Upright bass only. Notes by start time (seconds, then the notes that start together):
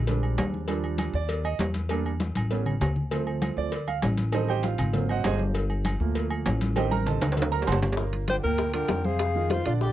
Already playing: A#1
0.38 D#2
1.13 D#2
1.59 E2
2.35 A1
2.81 D2
3.57 D2
4.03 A1
4.79 G#1
5.25 G1
6.00 D2
6.46 A1
7.22 D2
7.68 G1
8.44 D2
8.89 F2
9.66 A#1